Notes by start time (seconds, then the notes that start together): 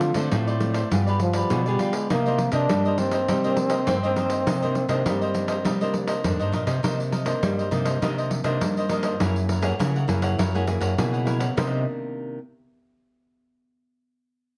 Already playing: D3 A3 C4 F4
0.01 muted cavaquinho stroke, pandeiro
0.14 D3 A3 C4 F4 A4 C5 D5, pandeiro
0.32 A2 F4 A4 C5 D5, pandeiro
0.47 A4 C5 D5, pandeiro
0.60 A3 C4 F4, pandeiro
0.74 A4 C5 D5, pandeiro
0.91 G2 G3 B3 F4 G4 G#4 B4 D5, pandeiro
1.07 B3 F4 G4 G#4 B4 D5, pandeiro
1.19 F3, muted cavaquinho stroke, pandeiro
1.33 G4 B4 D5, pandeiro
1.50 B2 D3 B3 F4 G#4, pandeiro
1.66 G3 B3 F4 G4 G#4 B4 D5, pandeiro
1.79 F4 G4 B4 D5, pandeiro
1.93 G#3 G4 B4 D5, pandeiro
2.10 C3 D#3 A#3 D4 D#4 A#4 C5 D#5, pandeiro
2.26 D#3 A#3 D4 A#4 C5 D#5, pandeiro
2.38 muted cavaquinho stroke, pandeiro
2.52 C3 D#3 A#3 D4 A#4 C5 D#5, pandeiro
2.69 G2 G3 D#4 A#4 C5 D#5, pandeiro
2.85 A#4 C5 D#5, pandeiro
2.98 D#3 A#3 C4 D4, pandeiro
3.11 A#4 C5 D#5, pandeiro
3.28 C3 G3 D#4 A#4 C5 D#5, pandeiro
3.44 D#3 A#3 D4 A#4 C5 D#5, pandeiro
3.57 muted cavaquinho stroke, pandeiro
3.70 A#4 C5 D#5, pandeiro
3.87 G2 D#3 A#3 C4 D4, pandeiro
4.03 D#3 A#3 D4 A#4 C5 D#5, pandeiro
4.16 D#4 A#4 C5 D#5, pandeiro
4.30 A#4 C5 D#5, pandeiro
4.46 C3 D#3 A#3 D4 D#4 A#4 C5 D#5, pandeiro
4.62 D#3 A#3 D4 A#4 C5 D#5, pandeiro
4.75 muted cavaquinho stroke, pandeiro
4.89 C3 D#3 A#3 D4 A#4 C5 D#5, pandeiro
5.06 G2 G3 D#4 A#4 C5 D#5, pandeiro
5.21 A#4 C5 D#5, pandeiro
5.34 D#3 A#3 D4, pandeiro
5.48 A#4 C5 D#5, pandeiro
5.65 C3 G3 D#4 A#4 C5 D#5, pandeiro
5.81 D#3 A#3 D4 A#4 C5 D#5, pandeiro
5.94 muted cavaquinho stroke, pandeiro
6.07 A#4 C5 D#5, pandeiro
6.24 F2 G2 D#3 A#3 D4, pandeiro
6.40 G2 A#4 C5 D#5, pandeiro
6.52 A#2 D#4 A#4 C5 D#5, pandeiro
6.66 C3 A#4 C5 D#5, pandeiro
6.83 C3 D#3 A#3 D4 D#4 A#4 C5 D#5, pandeiro
6.99 muted cavaquinho stroke, pandeiro
7.12 D#4 A#4 C5 D#5, pandeiro
7.25 D#3 A#3 D4 A#4 C5 D#5, pandeiro
7.42 G2 G3, pandeiro
7.58 A#4 C5 D#5, pandeiro
7.71 C3 D#3 A#3 D4 D#4 A#4 C5 D#5, pandeiro
7.85 A#4 C5 D#5, pandeiro
8.01 C3 D#3 A#3 D4 D#4 A#4 C5 D#5, pandeiro
8.18 A#4 C5 D#5, pandeiro
8.31 muted cavaquinho stroke, pandeiro
8.44 C3 D#3 A#3 D4 A#4 C5 D#5, pandeiro
8.61 G2, pandeiro
8.77 A#4 C5 D#5, pandeiro
8.89 D#3 A#3 D4 D#4 A#4 C5 D#5, pandeiro
9.03 A#4 C5 D#5, pandeiro
9.20 F#2 F#3 A#3 E4 G#4 A#4 C#5 F#5, pandeiro
9.36 muted cavaquinho stroke, pandeiro
9.49 E4 A#4 C#5 F#5, pandeiro
9.62 A#3 E4 G#4 C#5 F#5, pandeiro
9.66 A#4
9.79 C#3 A#3 E4 G#4, pandeiro
9.96 A#4 C#5 F#5, pandeiro
10.07 F#2 A#3 E4 G#4 A#4 C#5 F#5, pandeiro
10.22 A#4 C#5 F#5, pandeiro
10.38 F#2 F#3 E4 A#4 C#5 F#5, pandeiro
10.54 A#3 E4 G#4 A#4 C#5 F#5, pandeiro
10.67 A#3 E4 G#4, muted cavaquinho stroke, pandeiro
10.81 F#2 A#4 C#5 F#5, pandeiro
10.98 B2 C#3 A#3 E4 G#4, pandeiro
11.13 A#4 C#5 F#5, pandeiro
11.25 E4 A#4 C#5 F#5, pandeiro
11.39 A#4 C#5 F#5, pandeiro
11.56 C3 D#3 A#3 D4 D#4 A#4 C5 D#5, pandeiro